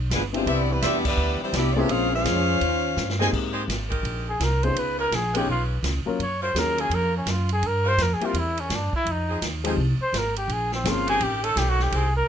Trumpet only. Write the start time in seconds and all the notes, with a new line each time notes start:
4.29 G#4
4.44 A#4
4.64 C5
4.79 B4
5.00 A#4
5.15 G#4
5.37 G4
5.51 F4
6.23 C#5
6.43 C5
6.58 A#4
6.81 G#4
6.94 A#4
7.17 C#4
7.30 F4
7.53 G#4
7.67 A#4
7.88 C5
8.02 A#4
8.14 G#4
8.26 F4
8.39 E4
8.60 C#4
8.75 D4
8.96 E4
9.11 D#4
10.02 C5
10.17 A#4
10.37 G4
10.52 G#4
10.74 C4
10.89 F4
11.09 G#4
11.23 G4
11.44 A4
11.58 G4
11.69 F#4
11.83 G4
11.96 G#4
12.17 A#4